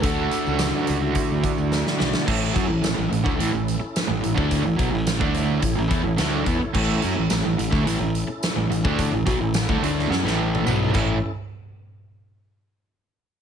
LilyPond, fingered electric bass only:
\new Staff \with { instrumentName = "Fingered electric bass" } { \clef bass \time 4/4 \key a \major \tempo 4 = 107 d,8 r16 cis,8 r16 cis,8 r16 d,16 r16 d,8 r16 b,,16 r16 | a,,8 fis,16 a,,16 a,,16 a,,16 a,,16 d,16 a,,16 a,,8 r8 a,,16 a,,16 d,16~ | d,16 a,,16 b,,16 a,,8 d,8. a,,16 a,,16 e,16 a,,16 d,8 e,16 r16 | a,,8 fis,16 a,,16 a,,16 a,,16 a,,16 d,16 a,,16 a,,8 r8 a,,16 a,,16 d,16~ |
d,16 a,,16 b,,16 a,,8 d,16 d,8 fis,16 a,,8. b,,8 a,,8 | r1 | }